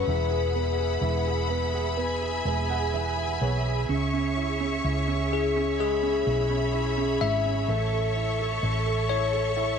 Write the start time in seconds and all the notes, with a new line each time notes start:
Already playing: B4 F#5
0.07 E1 E3 G#4 E5 B5
0.31 G#4
0.55 B3
0.78 G#4
1.01 E1 E3
1.26 G#4
1.50 B3
1.74 G#4
1.97 B3 G#5
2.22 G#4
2.45 E1 B3 G#5
2.70 G#4 F#5
2.94 E3 E5
3.17 G#4
3.41 B1 B3 C#5
3.66 G#4
3.89 C#2 C#3 C#5 C#6
4.13 C#4
4.37 E4
4.60 C#4
4.84 C#2 E4
5.08 C#4
5.32 E4 G#4
5.56 C#4
5.79 G#3 G#4 B5
6.03 C#4
6.27 B1 E4
6.50 C#4
6.74 E4
6.98 C#4
7.21 G#1 E4 E5
7.46 C#4
7.68 A1 A3 A4 C#6
7.93 A4
8.16 E4
8.40 A4
8.63 A1 A3
8.86 A4
9.09 E4 C#5
9.34 A4
9.57 E4